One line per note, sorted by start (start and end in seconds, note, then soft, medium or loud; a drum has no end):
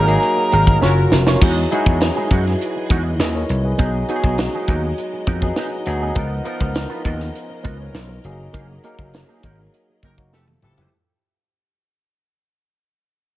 0.00 0.15 G#1 medium
0.00 0.07 F#3 loud
0.00 1.39 F#3 medium
0.00 0.07 A#3 medium
0.00 0.49 A#3 medium
0.00 0.08 D#4 medium
0.00 0.11 D#4 medium
0.00 0.80 D#4 medium
0.00 0.08 G#4 loud
0.00 0.49 G#4 medium
0.00 0.79 G#4 medium
0.00 0.78 A#4 medium
0.00 1.37 A#4 medium
0.00 0.49 C#5 loud
0.07 0.54 F#3 loud
0.07 0.55 A#3 medium
0.07 0.55 D#4 medium
0.07 0.55 G#4 loud
0.07 muted clean electric guitar stroke soft
0.07 closed hi-hat soft
0.22 muted clean electric guitar stroke soft
0.22 closed hi-hat medium
0.37 muted clean electric guitar stroke medium
0.52 0.75 G#1 medium
0.52 0.67 D#4 medium
0.52 0.66 G#4 medium
0.52 0.65 A#4 medium
0.52 closed hi-hat medium
0.66 0.81 D#4 medium
0.66 0.82 G#4 medium
0.66 0.82 A#4 medium
0.66 kick medium
0.66 closed hi-hat soft
0.81 1.05 F#1 loud
0.81 1.20 F#3 medium
0.81 1.12 F#3 medium
0.81 1.00 C#4 medium
0.81 1.20 C#4 medium
0.81 1.40 F4 medium
0.81 0.96 F4 medium
0.81 1.20 F4 medium
0.81 1.12 F4 medium
0.81 1.20 A#4 medium
0.81 1.12 A#4 medium
0.81 0.96 C#5 loud
0.81 snare medium
0.96 muted clean electric guitar stroke soft
1.12 1.35 F1 loud
1.12 muted clean electric guitar stroke soft
1.12 snare medium
1.27 1.43 C#4 medium
1.27 1.42 F4 medium
1.27 1.42 C#5 medium
1.27 snare medium
1.41 1.65 E2 loud
1.41 3.77 E3 medium
1.41 1.60 F#3 medium
1.41 1.61 G#3 medium
1.41 1.60 D#4 medium
1.41 1.57 D#4 medium
1.41 1.60 E4 medium
1.41 3.77 F#4 medium
1.41 1.55 F#4 medium
1.41 3.77 G#4 medium
1.41 1.61 G#4 medium
1.41 10.29 D#5 medium
1.41 kick loud
1.41 crash medium
1.56 muted clean electric guitar stroke medium
1.71 2.47 F#3 loud
1.71 1.86 G#3 medium
1.71 2.47 D#4 medium
1.71 1.87 D#4 medium
1.71 2.47 E4 medium
1.71 1.86 F#4 medium
1.71 2.47 G#4 loud
1.71 closed hi-hat medium
1.86 2.09 E2 medium
1.86 2.01 D#4 medium
1.86 2.01 F#4 medium
1.86 kick loud
2.01 muted clean electric guitar stroke soft
2.01 snare loud
2.01 closed hi-hat medium
2.16 2.30 G#3 medium
2.16 2.31 D#4 medium
2.16 2.31 G#4 medium
2.31 2.53 F#2 medium
2.31 2.50 G#3 medium
2.31 2.46 D#4 medium
2.31 2.45 F#4 medium
2.31 kick medium
2.31 closed hi-hat medium
2.46 muted clean electric guitar stroke soft
2.46 snare soft
2.61 closed hi-hat medium
2.76 muted clean electric guitar stroke soft
2.90 3.13 E2 medium
2.90 3.09 G#3 medium
2.90 3.05 D#4 medium
2.90 3.03 F#4 loud
2.90 kick loud
2.90 closed hi-hat medium
3.05 muted clean electric guitar stroke medium
3.19 3.42 D#2 medium
3.19 3.35 B4 medium
3.19 3.34 D#5 medium
3.19 muted clean electric guitar stroke soft
3.19 snare medium
3.19 closed hi-hat medium
3.34 3.63 A#4 medium
3.34 3.63 C#5 medium
3.34 muted clean electric guitar stroke soft
3.49 3.72 C2 medium
3.49 closed hi-hat medium
3.64 3.79 G#4 medium
3.64 3.93 B4 medium
3.64 muted clean electric guitar stroke soft
3.78 4.02 B1 loud
3.78 3.98 F#3 medium
3.78 6.15 G#3 medium
3.78 3.97 B3 medium
3.78 8.21 B3 medium
3.78 3.98 B3 medium
3.78 3.93 D#4 medium
3.78 3.98 D#4 medium
3.78 3.92 G#4 medium
3.78 3.99 G#4 loud
3.78 kick loud
3.78 closed hi-hat medium
3.93 muted clean electric guitar stroke soft
4.08 4.84 F#3 medium
4.08 4.84 B3 medium
4.08 4.23 B3 medium
4.08 4.84 D#4 medium
4.08 4.23 D#4 medium
4.08 4.16 F#4 medium
4.08 4.22 G#4 medium
4.08 closed hi-hat medium
4.16 4.88 G#4 loud
4.23 4.46 B1 loud
4.23 4.38 B3 medium
4.23 4.38 D#4 medium
4.23 4.38 G#4 medium
4.23 kick medium
4.38 snare loud
4.38 closed hi-hat medium
4.54 4.67 B3 medium
4.54 4.68 D#4 medium
4.54 4.68 G#4 medium
4.68 4.91 D#2 medium
4.68 4.87 B3 medium
4.68 4.84 D#4 medium
4.68 4.83 A#4 loud
4.68 kick medium
4.68 closed hi-hat medium
4.84 muted clean electric guitar stroke soft
4.98 muted clean electric guitar stroke soft
4.98 closed hi-hat medium
5.13 muted clean electric guitar stroke soft
5.27 5.50 F2 medium
5.27 5.46 B3 medium
5.27 5.42 D#4 medium
5.27 5.42 A#4 loud
5.27 kick loud
5.27 closed hi-hat medium
5.41 5.70 F#3 medium
5.41 5.71 B3 medium
5.41 5.71 D#4 medium
5.41 5.71 G#4 loud
5.41 muted clean electric guitar stroke soft
5.41 kick medium
5.56 5.76 B3 medium
5.56 5.72 D#4 medium
5.56 5.71 G#4 medium
5.56 snare medium
5.56 closed hi-hat medium
5.72 muted clean electric guitar stroke medium
5.86 6.09 D2 loud
5.86 6.06 F#3 loud
5.86 6.06 B3 loud
5.86 6.06 D#4 medium
5.86 6.06 G#4 loud
5.86 muted clean electric guitar stroke soft
5.86 closed hi-hat medium
6.01 6.15 B3 soft
6.01 6.17 D#4 medium
6.01 6.16 G#4 medium
6.15 6.39 C#2 loud
6.15 8.23 C#3 medium
6.15 6.35 F3 medium
6.15 6.35 B3 medium
6.15 6.35 D#4 medium
6.15 6.31 F4 medium
6.15 8.23 F4 medium
6.15 6.35 A#4 loud
6.15 6.30 A#4 medium
6.15 10.29 A#4 medium
6.15 kick loud
6.15 closed hi-hat medium
6.31 muted clean electric guitar stroke medium
6.45 7.21 F3 loud
6.45 6.60 B3 medium
6.45 7.21 B3 medium
6.45 7.21 D#4 medium
6.45 6.59 F4 medium
6.45 7.22 A#4 loud
6.45 6.59 A#4 medium
6.45 closed hi-hat medium
6.60 6.84 C#2 loud
6.60 6.73 B3 soft
6.60 6.74 F4 medium
6.60 6.74 A#4 medium
6.60 kick medium
6.75 snare loud
6.75 closed hi-hat medium
6.89 7.03 B3 medium
6.89 7.03 F4 medium
6.89 7.05 B4 medium
7.04 7.28 D#2 loud
7.04 7.24 B3 medium
7.04 7.18 F4 medium
7.04 7.18 A#4 medium
7.04 kick medium
7.04 closed hi-hat medium
7.19 muted clean electric guitar stroke medium
7.19 snare soft
7.35 closed hi-hat medium
7.49 muted clean electric guitar stroke soft
7.63 7.88 C#2 medium
7.63 7.83 B3 medium
7.63 7.79 F4 medium
7.63 7.78 A#4 medium
7.63 7.79 B4 medium
7.63 7.79 D#5 medium
7.63 kick medium
7.63 closed hi-hat medium
7.79 8.08 A#4 medium
7.79 8.08 C#5 medium
7.79 muted clean electric guitar stroke soft
7.93 8.17 B1 medium
7.93 muted clean electric guitar stroke soft
7.93 snare medium
7.93 closed hi-hat medium
8.09 8.37 A#4 medium
8.09 muted clean electric guitar stroke soft
8.24 8.47 F#1 medium
8.24 8.72 F#3 loud
8.24 10.31 F#3 medium
8.24 8.72 A#3 medium
8.24 8.72 D#4 medium
8.24 10.31 G#4 medium
8.24 8.73 G#4 loud
8.24 closed hi-hat medium
8.39 muted clean electric guitar stroke soft
8.53 8.77 F#1 loud
8.53 8.73 A#3 medium
8.53 8.68 D#4 medium
8.53 8.67 G#4 medium
8.53 kick loud
8.53 closed hi-hat medium
8.69 muted clean electric guitar stroke soft
8.83 9.60 F#3 medium
8.83 8.98 A#3 medium
8.83 9.60 A#3 medium
8.83 8.98 D#4 medium
8.83 9.60 D#4 medium
8.83 8.98 G#4 medium
8.83 9.60 A#4 loud
8.83 closed hi-hat medium
8.99 9.22 F#1 loud
8.99 9.12 A#3 soft
8.99 9.12 D#4 medium
8.99 9.13 G#4 medium
8.99 kick loud
9.13 muted clean electric guitar stroke soft
9.13 snare loud
9.13 closed hi-hat medium
9.28 9.42 A#3 soft
9.28 9.43 D#4 medium
9.28 9.43 G#4 medium
9.43 9.66 G#1 medium
9.43 9.62 A#3 medium
9.43 9.59 D#4 medium
9.43 9.59 A#4 medium
9.43 kick medium
9.43 closed hi-hat medium
9.59 muted clean electric guitar stroke soft
9.74 closed hi-hat medium
9.89 muted clean electric guitar stroke soft
10.03 10.32 F#1 medium
10.03 10.16 D#3 medium
10.03 10.22 A#3 medium
10.03 10.16 C#4 medium
10.03 10.18 D#4 medium
10.03 10.16 A#4 medium
10.03 10.18 A#4 medium
10.03 kick loud
10.03 closed hi-hat medium
10.17 10.33 F#3 medium
10.17 10.32 A#3 medium
10.17 10.33 D#4 medium
10.17 10.33 F#4 medium
10.17 muted clean electric guitar stroke medium
10.17 kick medium
10.32 10.55 F1 medium
10.32 10.46 E3 medium
10.32 10.91 F3 medium
10.32 10.51 A3 medium
10.32 10.46 C4 medium
10.32 10.91 E4 medium
10.32 10.48 E4 medium
10.32 10.91 G4 medium
10.32 10.48 G4 medium
10.32 10.91 A4 medium
10.32 10.46 A4 medium
10.32 snare medium
10.48 muted clean electric guitar stroke soft
10.48 high tom medium
10.62 10.85 F#1 medium
10.62 10.88 E3 medium
10.62 10.81 F3 medium
10.62 10.81 A3 medium
10.62 10.88 C4 medium
10.62 10.82 E4 medium
10.62 10.82 G4 loud
10.62 10.88 A4 loud
10.62 muted clean electric guitar stroke soft
10.62 mid tom medium
10.77 10.93 A3 soft
10.77 10.92 E4 medium
10.77 10.92 G4 medium
10.77 floor tom medium